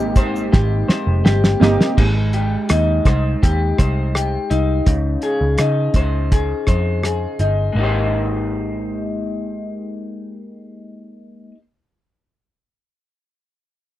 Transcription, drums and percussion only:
0.16 kick, closed hi-hat, shaker
0.36 shaker
0.53 kick, snare
0.89 snare
1.26 snare
1.44 snare
1.62 snare
1.81 snare
1.98 kick, crash
2.33 closed hi-hat
2.69 cross-stick, closed hi-hat
3.05 kick, cross-stick, closed hi-hat
3.43 kick, closed hi-hat
3.78 kick, cross-stick, closed hi-hat
4.15 cross-stick, closed hi-hat
4.51 closed hi-hat
4.86 kick, closed hi-hat
5.22 closed hi-hat
5.58 cross-stick, closed hi-hat
5.94 kick, closed hi-hat
6.32 kick, closed hi-hat
6.67 kick, cross-stick, closed hi-hat
7.03 cross-stick, closed hi-hat
7.39 closed hi-hat

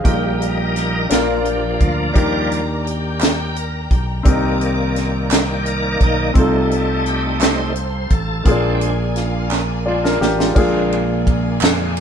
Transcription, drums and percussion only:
0.05 kick, closed hi-hat
0.42 closed hi-hat
0.76 snare, closed hi-hat
1.10 snare, closed hi-hat
1.45 closed hi-hat
1.80 kick, closed hi-hat
2.16 kick, closed hi-hat
2.52 closed hi-hat
2.87 closed hi-hat
3.21 snare, clap, closed hi-hat
3.56 closed hi-hat
3.91 kick, closed hi-hat
4.25 kick, closed hi-hat
4.61 closed hi-hat
4.96 snare, closed hi-hat
5.31 snare, clap, closed hi-hat
5.66 closed hi-hat
6.01 kick, closed hi-hat
6.35 kick, closed hi-hat
6.71 closed hi-hat
7.06 closed hi-hat
7.41 snare, clap, closed hi-hat
7.76 closed hi-hat
8.10 kick, closed hi-hat
8.46 kick, closed hi-hat
8.81 closed hi-hat
9.16 snare, closed hi-hat
9.51 snare, clap
10.05 snare
10.22 snare
10.40 snare
10.56 kick, crash
10.92 ride bell
11.27 kick, ride bell
11.61 snare, clap, ride bell
11.97 ride bell

